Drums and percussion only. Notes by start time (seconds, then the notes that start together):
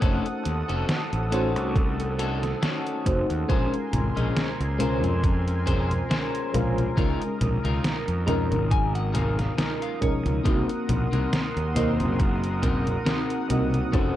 0.02 kick, closed hi-hat
0.26 closed hi-hat
0.45 closed hi-hat
0.69 closed hi-hat
0.89 snare, closed hi-hat
1.13 closed hi-hat
1.32 closed hi-hat
1.56 closed hi-hat
1.76 kick, closed hi-hat
2.00 closed hi-hat
2.19 closed hi-hat
2.43 snare, closed hi-hat
2.63 snare, closed hi-hat
2.87 closed hi-hat
3.06 kick, closed hi-hat
3.30 closed hi-hat
3.50 kick, closed hi-hat, high conga
3.74 closed hi-hat
3.93 closed hi-hat, high conga
4.17 closed hi-hat, high conga
4.37 snare, closed hi-hat, high conga
4.61 closed hi-hat
4.80 closed hi-hat, high conga
5.04 closed hi-hat, high conga
5.24 kick, closed hi-hat, high conga
5.48 closed hi-hat
5.67 kick, closed hi-hat, high conga
5.91 closed hi-hat, high conga
6.11 snare, closed hi-hat, high conga
6.35 closed hi-hat
6.54 closed hi-hat, high conga
6.78 closed hi-hat, high conga
6.97 kick, closed hi-hat, high conga
7.22 closed hi-hat
7.41 closed hi-hat, high conga
7.65 closed hi-hat, high conga
7.84 snare, closed hi-hat, high conga
8.08 closed hi-hat
8.28 closed hi-hat, high conga
8.52 closed hi-hat, high conga
8.71 kick, closed hi-hat, high conga
8.95 closed hi-hat
9.15 closed hi-hat, high conga
9.39 snare, closed hi-hat, high conga
9.58 snare, closed hi-hat, high conga
9.82 closed hi-hat
10.02 kick, closed hi-hat, high conga
10.26 closed hi-hat, high conga
10.45 kick, closed hi-hat, high conga
10.69 closed hi-hat
10.89 closed hi-hat, high conga
11.13 closed hi-hat, high conga
11.33 snare, closed hi-hat, high conga
11.57 closed hi-hat
11.76 closed hi-hat, high conga
12.00 closed hi-hat, high conga
12.19 kick, closed hi-hat, high conga
12.44 closed hi-hat
12.63 kick, closed hi-hat, high conga
12.87 closed hi-hat, high conga
13.06 snare, closed hi-hat, high conga
13.30 closed hi-hat
13.50 closed hi-hat, high conga
13.74 closed hi-hat, high conga
13.93 kick, closed hi-hat, high conga